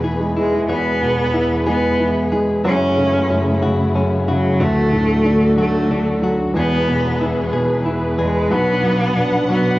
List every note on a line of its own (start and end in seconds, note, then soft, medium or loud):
0.00 0.66 E2 medium
0.00 0.67 E2 medium
0.00 0.67 B2 medium
0.00 0.67 E3 medium
0.00 0.68 E3 medium
0.00 0.35 E3 medium
0.00 0.67 B3 medium
0.00 1.01 B3 medium
0.00 0.69 G#4 medium
0.00 0.68 G#4 medium
0.00 0.67 B4 medium
0.20 0.52 G#3 medium
0.37 0.68 E3 medium
0.37 0.68 G#3 medium
0.37 1.33 E4 medium
0.53 0.69 G#3 medium
0.69 2.60 E1 medium
0.69 2.61 E2 medium
0.69 2.63 E2 medium
0.69 2.63 E3 medium
0.69 1.63 B3 loud
0.69 2.63 B3 medium
0.69 1.65 G#4 medium
0.69 4.57 G#4 medium
0.69 2.63 B4 medium
1.01 2.28 B2 medium
1.01 2.71 B3 medium
1.34 1.99 E3 medium
1.34 1.99 E4 medium
1.67 2.30 G#3 medium
1.67 2.28 B3 medium
1.67 2.31 G#4 medium
1.99 2.63 E3 medium
1.99 2.71 E4 medium
2.32 2.64 G#3 medium
2.32 2.65 G#4 medium
2.64 4.56 F#1 medium
2.64 3.28 F#2 medium
2.64 4.59 F#2 medium
2.64 4.59 C#3 medium
2.64 4.60 E3 medium
2.64 4.59 A3 medium
2.64 3.59 C#4 loud
2.64 4.59 E4 medium
2.64 3.62 F#4 medium
2.98 3.61 C#3 medium
2.98 4.59 A3 medium
3.30 3.94 F#2 medium
3.30 3.94 C#4 medium
3.62 4.26 C#3 medium
3.62 4.28 F#4 medium
3.95 4.58 F#2 medium
3.95 4.67 C#4 medium
4.28 4.59 C#3 medium
4.28 4.64 F#3 loud
4.28 4.60 F#4 medium
4.60 6.52 D1 medium
4.60 6.51 D2 medium
4.60 6.55 D2 medium
4.60 6.55 D3 medium
4.60 4.92 A3 medium
4.60 5.59 A3 loud
4.60 6.55 A3 medium
4.60 5.57 F#4 medium
4.60 6.55 F#4 medium
4.60 6.55 A4 medium
4.92 6.19 A2 medium
4.92 6.62 A3 medium
5.24 5.88 D3 medium
5.24 5.90 D4 medium
5.56 6.20 F#3 medium
5.56 6.20 A3 medium
5.56 6.22 F#4 medium
5.90 6.53 D3 medium
5.90 6.62 D4 medium
6.22 6.54 F#3 medium
6.22 6.56 F#4 medium
6.54 8.46 E1 medium
6.54 8.17 E2 medium
6.54 8.50 E2 medium
6.54 8.51 E3 medium
6.54 8.50 E3 medium
6.54 7.50 B3 loud
6.54 8.50 B3 medium
6.54 7.52 G#4 medium
6.54 8.50 G#4 medium
6.54 9.79 B4 medium
6.88 7.51 B2 medium
6.88 8.58 B3 medium
7.21 7.84 E3 medium
7.21 7.84 E4 medium
7.53 8.48 B2 medium
7.53 8.17 G#4 medium
7.85 8.49 E3 medium
7.85 8.57 E4 medium
8.18 8.50 E2 medium
8.18 8.54 G#3 medium
8.18 8.51 G#4 medium
8.50 9.79 B1 medium
8.50 9.79 B2 medium
8.50 9.14 B2 medium
8.50 9.79 F#3 medium
8.50 9.49 B3 loud
8.50 9.79 D4 medium
8.50 9.48 F#4 medium
8.50 9.79 F#5 medium
8.83 9.48 F#3 medium
8.83 9.79 B3 medium
9.16 9.79 B2 medium
9.16 9.79 D4 medium
9.49 9.79 F#3 medium
9.49 9.79 B3 medium
9.49 9.79 F#4 medium